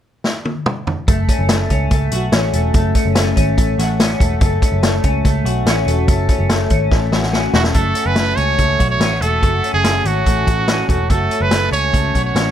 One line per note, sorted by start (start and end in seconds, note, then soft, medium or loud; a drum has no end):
0.24 snare medium
0.45 high tom medium
0.66 mid tom medium
0.87 floor tom loud
1.08 1.26 F#1 medium
1.08 1.49 A3 medium
1.08 kick loud
1.08 closed hi-hat medium
1.29 1.70 C#4 soft
1.29 kick medium
1.29 closed hi-hat medium
1.39 1.66 F#1 medium
1.49 1.91 A3 medium
1.49 snare loud
1.49 closed hi-hat medium
1.70 1.88 C#2 medium
1.70 2.33 C#4 medium
1.70 kick medium
1.70 closed hi-hat medium
1.91 2.09 C#2 medium
1.91 2.53 A3 medium
1.91 kick medium
1.91 closed hi-hat medium
2.11 2.30 B1 medium
2.11 3.79 F#4 medium
2.11 closed hi-hat medium
2.32 2.50 A1 loud
2.32 2.94 C#4 medium
2.32 snare loud
2.32 closed hi-hat medium
2.53 2.71 E1 medium
2.53 2.74 A3 medium
2.53 closed hi-hat medium
2.74 2.92 F#1 medium
2.74 3.15 A3 medium
2.74 kick loud
2.74 closed hi-hat medium
2.95 3.36 C#4 soft
2.95 kick medium
2.95 closed hi-hat medium
3.05 3.32 F#1 medium
3.15 3.57 A3 medium
3.15 snare loud
3.15 closed hi-hat medium
3.36 3.55 G#1 medium
3.36 4.00 C#4 medium
3.36 kick medium
3.36 closed hi-hat medium
3.57 3.76 A1 medium
3.57 4.21 A3 medium
3.57 kick medium
3.57 closed hi-hat medium
3.78 4.14 A1 medium
3.78 5.45 F#4 medium
3.78 snare soft
3.78 closed hi-hat medium
4.00 4.62 C#4 medium
4.00 snare loud
4.00 closed hi-hat medium
4.20 4.38 E1 medium
4.20 4.41 A3 medium
4.20 kick medium
4.20 closed hi-hat medium
4.41 4.59 F#1 loud
4.41 4.83 A3 medium
4.41 kick loud
4.41 closed hi-hat medium
4.62 5.04 C#4 soft
4.62 kick medium
4.62 closed hi-hat medium
4.72 4.99 F#1 medium
4.83 5.25 A3 medium
4.83 snare loud
4.83 closed hi-hat medium
5.04 5.22 C#2 medium
5.04 5.67 C#4 medium
5.04 kick medium
5.04 closed hi-hat medium
5.24 5.42 C#2 loud
5.24 5.87 A3 medium
5.24 kick medium
5.24 closed hi-hat medium
5.44 5.63 B1 medium
5.44 7.12 F#4 medium
5.44 closed hi-hat medium
5.66 5.84 A1 medium
5.66 6.29 C#4 medium
5.66 snare loud
5.66 closed hi-hat medium
5.86 6.05 E1 medium
5.86 6.08 A3 medium
5.86 closed hi-hat medium
6.08 6.26 F#1 medium
6.08 6.49 A3 medium
6.08 kick loud
6.08 closed hi-hat medium
6.29 6.70 C#4 soft
6.29 kick medium
6.29 closed hi-hat medium
6.39 6.66 F#1 medium
6.49 6.91 A3 medium
6.49 snare loud
6.49 closed hi-hat medium
6.70 6.88 G#1 medium
6.70 7.33 C#4 medium
6.70 kick medium
6.70 closed hi-hat medium
6.91 7.09 A1 loud
6.91 7.54 A3 soft
6.91 kick medium
6.91 snare medium
7.11 7.47 A1 medium
7.11 7.75 F#4 medium
7.11 snare medium
7.23 snare medium
7.33 7.95 C#4 soft
7.33 snare medium
7.54 7.72 E1 medium
7.54 7.75 A3 medium
7.54 7.64 F#4 medium
7.54 snare medium
7.64 snare medium
7.74 7.93 F#1 medium
7.74 8.17 A3 medium
7.74 8.79 F#4 medium
7.74 8.08 A4 medium
7.74 kick medium
7.74 closed hi-hat medium
7.95 8.37 C#4 soft
7.95 closed hi-hat medium
8.06 8.33 F#1 medium
8.06 8.38 B4 loud
8.16 8.58 A3 medium
8.16 snare loud
8.16 closed hi-hat medium
8.37 8.55 C#2 medium
8.37 9.01 C#4 soft
8.37 8.90 C#5 loud
8.37 closed hi-hat medium
8.58 8.76 C#2 medium
8.58 9.21 A3 soft
8.58 kick medium
8.58 closed hi-hat medium
8.79 8.97 B1 medium
8.79 9.43 F#4 medium
8.79 kick medium
8.79 closed hi-hat medium
8.90 9.23 C#5 medium
8.99 9.18 A1 medium
8.99 9.11 B3 medium
8.99 snare medium
8.99 closed hi-hat medium
9.11 9.63 C#4 soft
9.21 9.39 E1 medium
9.21 9.43 A3 medium
9.21 9.74 A4 medium
9.21 closed hi-hat medium
9.42 9.60 F#1 medium
9.42 9.85 A3 medium
9.42 10.47 F#4 medium
9.42 kick medium
9.42 closed hi-hat medium
9.64 10.05 C#4 soft
9.64 closed hi-hat medium
9.74 10.00 F#1 medium
9.74 10.08 G#4 medium
9.84 10.26 A3 medium
9.84 snare loud
9.84 closed hi-hat medium
10.05 10.23 G#1 medium
10.05 10.66 C#4 medium
10.05 10.89 F#4 medium
10.05 closed hi-hat medium
10.26 10.44 A1 medium
10.26 10.88 A3 medium
10.26 kick medium
10.26 closed hi-hat medium
10.47 10.83 A1 medium
10.47 11.10 F#4 medium
10.47 kick medium
10.47 closed hi-hat medium
10.67 11.29 C#4 medium
10.67 snare medium
10.67 closed hi-hat medium
10.89 11.07 E1 medium
10.89 11.09 A3 medium
10.89 11.12 F#4 medium
10.89 kick medium
10.89 closed hi-hat medium
11.10 11.28 F#1 medium
11.10 11.51 A3 medium
11.10 12.15 F#4 medium
11.10 11.43 A4 medium
11.10 kick medium
11.10 closed hi-hat medium
11.31 11.72 C#4 soft
11.31 closed hi-hat medium
11.41 11.68 F#1 medium
11.41 11.72 B4 medium
11.51 11.94 A3 medium
11.51 snare loud
11.51 closed hi-hat medium
11.72 11.90 C#2 medium
11.72 12.34 C#4 medium
11.72 12.21 C#5 loud
11.72 closed hi-hat medium
11.93 12.11 C#2 medium
11.93 12.51 A3 medium
11.93 kick medium
11.93 closed hi-hat medium
12.15 12.32 B1 medium
12.15 12.51 F#4 medium
12.15 kick medium
12.15 closed hi-hat medium
12.25 12.51 C#5 medium
12.35 12.51 A1 medium
12.35 12.51 C#4 medium
12.35 snare loud
12.35 closed hi-hat medium